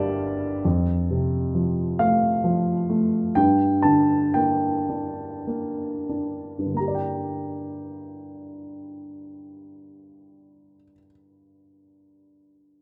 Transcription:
0.00 0.61 G1 medium
0.00 0.61 G2 medium
0.00 0.16 D3 medium
0.00 0.67 G3 soft
0.00 0.61 A#3 soft
0.00 0.38 D5 medium
0.00 0.66 E5 medium
0.00 0.67 F5 medium
0.00 0.67 G5 medium
0.65 3.32 F2 soft
1.11 2.86 C3 soft
1.55 2.42 F3 soft
1.99 2.88 A3 soft
1.99 3.40 F5 medium
2.44 3.33 F3 soft
2.89 3.35 A3 soft
3.35 6.57 G2 soft
3.35 3.86 G5 medium
3.83 6.05 D3 soft
3.83 4.36 A5 medium
4.34 5.46 A#3 soft
4.34 6.05 G5 medium
4.90 6.08 D4 soft
5.47 6.72 A#3 soft
6.09 6.75 D4 soft
6.59 10.76 G2 soft
6.66 10.83 D3 soft
6.73 10.91 A#3 soft
6.73 10.94 A#5 soft
6.80 10.97 G4 soft
6.88 11.05 D5 soft
6.95 11.12 G5 soft

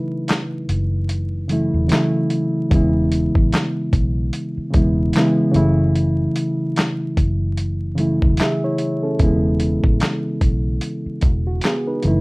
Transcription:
0.00 0.48 C#3 medium
0.00 0.48 E3 medium
0.00 0.49 F#3 medium
0.00 0.49 A3 medium
0.00 2.73 D#4 soft
0.00 0.50 E4 loud
0.00 2.73 B4 medium
0.28 snare loud
0.28 clap medium
0.28 closed hi-hat medium
0.69 1.69 F#1 medium
0.69 closed hi-hat medium
1.09 closed hi-hat medium
1.48 1.85 C#3 medium
1.48 1.85 E3 medium
1.48 1.86 F#3 medium
1.48 1.86 A3 medium
1.48 closed hi-hat medium
1.53 1.87 E4 medium
1.74 1.89 E1 medium
1.88 2.60 C#3 medium
1.88 2.61 E3 medium
1.88 2.62 F#3 medium
1.88 2.62 A3 medium
1.88 closed hi-hat medium
1.92 2.63 E4 medium
1.92 snare loud
1.92 clap loud
2.30 closed hi-hat medium
2.70 3.28 E1 loud
2.70 4.13 C#3 medium
2.70 4.14 E3 medium
2.70 4.14 G#3 medium
2.70 4.15 B3 medium
2.70 kick loud
2.70 closed hi-hat medium
2.75 4.16 E4 medium
3.12 closed hi-hat medium
3.35 3.51 A1 medium
3.35 kick loud
3.52 snare loud
3.52 clap loud
3.52 closed hi-hat medium
3.93 4.29 B1 medium
3.93 kick medium
3.93 closed hi-hat medium
4.33 closed hi-hat medium
4.57 muted fingered electric bass stroke soft
4.71 5.10 E1 medium
4.71 5.08 C#3 medium
4.71 5.08 E3 medium
4.71 5.09 G#3 medium
4.71 5.10 B3 medium
4.71 kick medium
4.71 closed hi-hat medium
4.75 5.10 E4 medium
5.13 5.50 C#3 medium
5.13 5.51 E3 medium
5.13 snare loud
5.13 clap medium
5.13 closed hi-hat medium
5.18 5.57 G#3 medium
5.18 5.57 B3 medium
5.18 5.55 E4 medium
5.52 6.27 F#1 loud
5.52 6.96 C#3 medium
5.52 6.96 E3 medium
5.52 6.97 F#3 medium
5.52 6.97 A3 medium
5.52 closed hi-hat medium
5.56 6.98 E4 loud
5.96 closed hi-hat medium
6.36 closed hi-hat medium
6.76 snare loud
6.76 clap loud
6.76 closed hi-hat medium
7.17 8.18 F#1 medium
7.17 kick medium
7.17 closed hi-hat medium
7.57 closed hi-hat medium
7.95 8.32 C#3 medium
7.95 8.33 E3 medium
7.95 8.34 F#3 medium
7.95 8.34 A3 medium
7.95 closed hi-hat medium
8.00 8.35 E4 medium
8.22 8.37 E1 medium
8.22 kick medium
8.37 8.62 G#4 medium
8.37 8.62 E5 medium
8.37 snare loud
8.37 clap medium
8.37 closed hi-hat medium
8.64 9.02 E4 medium
8.64 9.02 C#5 medium
8.78 closed hi-hat medium
9.03 9.42 C#4 medium
9.03 9.41 A4 medium
9.19 9.77 E1 loud
9.19 10.62 C#3 medium
9.19 10.63 E3 medium
9.19 10.63 G#3 medium
9.19 10.64 B3 medium
9.19 kick loud
9.19 closed hi-hat medium
9.24 10.64 E4 medium
9.60 closed hi-hat medium
9.84 9.99 A1 medium
9.84 kick loud
10.00 snare loud
10.00 clap loud
10.00 closed hi-hat medium
10.41 10.78 B1 medium
10.41 kick medium
10.41 closed hi-hat medium
10.81 closed hi-hat medium
11.06 muted fingered electric bass stroke soft
11.21 11.59 E1 loud
11.21 kick medium
11.21 closed hi-hat medium
11.47 11.63 F#4 medium
11.61 11.86 B3 medium
11.61 11.86 G#4 medium
11.61 snare loud
11.61 clap medium
11.61 closed hi-hat medium
11.87 12.21 D#4 medium
11.87 12.21 B4 medium
12.03 12.21 F#1 loud
12.03 12.21 C#3 medium
12.03 12.21 E3 medium
12.03 12.21 F#3 medium
12.03 12.21 A3 medium
12.03 closed hi-hat medium
12.08 12.21 E4 loud

